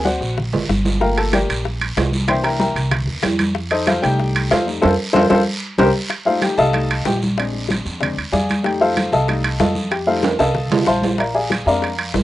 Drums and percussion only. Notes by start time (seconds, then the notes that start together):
0.05 high bongo, high conga, short guiro
0.22 high bongo, short guiro
0.38 high bongo, high conga, low conga, long guiro
0.53 high bongo, high conga, low conga, low timbale
0.69 high bongo, low bongo, high conga, short guiro
0.85 high conga, low timbale, short guiro
1.01 high bongo, high conga, long guiro
1.18 high conga, high timbale
1.33 high bongo, high conga, high timbale, low timbale, short guiro
1.50 high conga, high timbale, short guiro
1.65 high bongo, high conga, long guiro
1.81 high conga, high timbale
1.97 high bongo, low bongo, high conga, high timbale, low timbale, short guiro
2.12 high conga, short guiro
2.28 high bongo, high conga, high timbale, long guiro
2.43 high bongo, high conga, high timbale
2.60 high bongo, high conga, low timbale, short guiro
2.76 high bongo, high timbale, short guiro
2.91 high bongo, high conga, low conga, high timbale, long guiro
3.07 high bongo, high conga
3.23 high bongo, low bongo, high conga, high timbale, low timbale, short guiro
3.39 high conga, high timbale, short guiro
3.55 high bongo, long guiro
3.71 high conga, high timbale
3.87 high bongo, high conga, high timbale, low timbale, short guiro
4.03 high conga, high timbale, short guiro
4.20 high bongo, high conga, long guiro
4.35 high conga, high timbale
4.51 high bongo, low bongo, high conga, high timbale, low timbale, short guiro
4.68 short guiro
4.83 low bongo, high conga, high timbale, long guiro
5.14 low bongo, high conga, high timbale, long guiro
5.30 low bongo, high conga, high timbale, long guiro
5.78 low bongo, high conga, high timbale, long guiro
6.10 high bongo, high conga, high timbale, long guiro
6.26 high conga
6.42 high bongo, high conga, high timbale, short guiro
6.58 high conga, short guiro
6.73 high bongo, high conga, high timbale, long guiro
6.90 high conga, high timbale
7.05 high bongo, low bongo, high conga, low timbale, short guiro
7.22 high conga, short guiro
7.38 high bongo, high conga, high timbale, long guiro
7.53 high bongo, high conga
7.69 high bongo, high conga, high timbale, short guiro
7.85 high bongo, high conga, short guiro
8.01 high bongo, high conga, low conga, high timbale, long guiro
8.18 high conga, high timbale
8.33 high bongo, low bongo, high conga, short guiro
8.49 high bongo, high conga, high timbale, short guiro
8.64 high bongo, high conga, high timbale, long guiro
8.82 high conga
8.97 high bongo, high conga, high timbale, short guiro
9.13 high conga, short guiro
9.28 high bongo, high conga, high timbale, long guiro
9.44 high conga, high timbale
9.60 high bongo, low bongo, high conga, low timbale, short guiro
9.75 high conga, short guiro
9.91 high bongo, high conga, high timbale, long guiro
10.08 high bongo, high conga
10.23 high bongo, high conga, high timbale, short guiro
10.39 high bongo, high conga, high timbale, short guiro
10.55 high bongo, high conga, low conga, long guiro
10.71 high conga, low conga, low timbale
10.86 high bongo, low bongo, high conga, short guiro
11.02 high bongo, high conga, low timbale, short guiro
11.18 high bongo, high conga, high timbale, long guiro
11.34 high conga
11.50 high bongo, high conga, high timbale, short guiro
11.67 high conga, short guiro
11.82 high bongo, high conga, high timbale, long guiro
11.98 high conga, high timbale
12.14 high bongo, low bongo, high conga, low timbale, short guiro